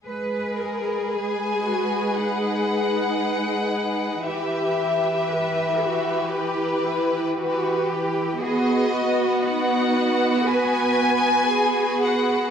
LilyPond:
<<
  \new Staff \with { instrumentName = "Violin section" } { \time 4/4 \key gis \minor \tempo 4 = 58 r4 gis''4 fis''2 | e''2 b'4. r8 | dis''4 fis''4 gis''4. fis''8 | }
  \new Staff \with { instrumentName = "Violin section" } { \time 4/4 \key gis \minor <gis' b'>1 | <g' b'>1 | <fis' b'>1 | }
  \new Staff \with { instrumentName = "Cello section" } { \time 4/4 \key gis \minor b'8 ais'8 gis'8 fis'8 dis'2 | g'4 b'8 fis'8 g'8 e'8 fis'8 g'8 | gis'8 fis'8 dis'4 b'4 gis'4 | }
  \new Staff \with { instrumentName = "Viola section" } { \clef bass \time 4/4 \key gis \minor gis1 | e1 | b1 | }
>>